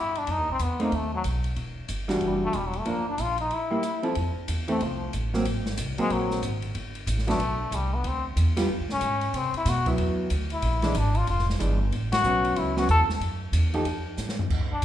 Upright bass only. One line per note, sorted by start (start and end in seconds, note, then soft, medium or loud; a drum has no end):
0.00 0.27 G2 medium
0.28 0.38 F#2 medium
0.38 0.48 D#2 medium
0.48 0.59 B1 soft
0.59 0.91 E2 medium
0.92 1.24 D#2 medium
1.25 1.56 B1 medium
1.56 1.88 E1 medium
1.89 2.20 G1 medium
2.21 2.53 F#1 medium
2.53 2.85 E1 medium
2.86 3.18 G1 medium
3.18 3.50 A#1 medium
4.16 4.35 F2 medium
4.36 muted upright bass stroke soft
4.48 4.80 E2 medium
4.81 5.12 C2 medium
5.14 5.45 A1 medium
5.46 5.77 G#1 medium
5.78 5.97 C2 medium
5.99 muted upright bass stroke soft
6.10 6.42 A#1 medium
6.42 6.74 G#1 medium
6.75 7.06 G1 medium
7.07 7.38 A1 medium
7.39 7.71 B1 medium
7.71 8.03 C2 medium
8.04 8.36 D2 medium
8.36 8.68 E2 medium
8.69 8.81 F2 medium
8.80 8.91 C#2 medium
8.91 9.01 B1 medium
9.01 9.33 G#2 medium
9.33 9.52 C3 medium
9.54 muted upright bass stroke soft
9.65 9.97 B2 medium
9.98 10.30 E2 medium
10.31 10.62 D2 medium
10.62 10.94 A#1 medium
10.95 11.26 G#1 medium
11.27 11.59 F1 medium
11.60 11.91 G1 medium
11.92 12.23 A1 medium
12.24 12.55 B1 medium
12.56 12.88 C#2 medium
12.89 13.08 E2 medium
13.09 muted upright bass stroke soft
13.20 13.52 F#2 medium
13.52 13.84 E2 medium
13.85 14.17 F2 medium
14.18 14.49 A2 medium
14.50 14.61 E2 medium
14.61 14.70 D2 medium
14.71 14.82 B1 soft